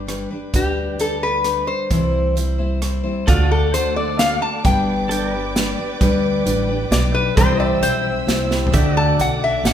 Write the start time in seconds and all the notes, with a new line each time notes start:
Already playing: G1 D5
0.07 G3 D4 G4 B4, cross-stick, closed hi-hat
0.30 D4 G4 B4
0.53 D2 G3 D4 G4 B4, kick, closed hi-hat
0.98 G3 D4 G4 A4 B4, closed hi-hat
1.23 B4
1.44 G3 D4 G4 B4, cross-stick, closed hi-hat
1.67 C5
1.90 C2 C3 E3 G3 C4 E4 C5, kick, closed hi-hat
2.36 G3 C4 E4 C5, closed hi-hat
2.58 G3 C4 E4 C5
2.81 G3 C4 E4 C5, cross-stick, closed hi-hat
3.03 G3 C4 E4 C5
3.27 D2 D3 A3 D4 F4 F#4 A4 D5 F#5 D6, kick, closed hi-hat
3.51 A4
3.73 A3 D4 F#4 A4 C5, closed hi-hat
3.96 A3 D4 F#4 A4 D5
4.18 A3 D4 F#4 A4 F5, snare, closed hi-hat
4.42 A5
4.64 G1 G3 B3 D4 G4 B4 D5 G5, kick, closed hi-hat
5.09 G3 D4 G4 A4 B4 D5 G5, closed hi-hat
5.32 D4 G4 B4
5.55 G3 D4 G4 B4, snare, closed hi-hat
5.78 D4 G4 B4
6.01 D2 G3 D4 G4 B4, kick, closed hi-hat
6.45 A1 G3 D4 G4 B4, closed hi-hat
6.69 D4 G4 B4
6.91 B1 G3 D4 G4 B4 D5, snare, closed hi-hat
7.14 D4 G4 B4
7.37 C2 C3 E3 G3 C4 E4 G4 B4 C5 D5 E5 G5 E6, kick, closed hi-hat
7.57 C5 D5
7.63 E5
7.81 B1 G3 C4 E4 C5, closed hi-hat
8.27 C2 G3 C4 E4 C5, snare, closed hi-hat
8.51 C4 E4 G4 C5, snare
8.67 floor tom
8.72 D2 D3 A3 D4 F#4 A4 D5 E5 F#5 G5 D6, kick, closed hi-hat
8.96 D5 F#5 A5
9.18 B1 A3 D4 F#4 D5 F#5, closed hi-hat
9.44 E5
9.64 A1 A3 D4 F#4 D5 F#5, snare, closed hi-hat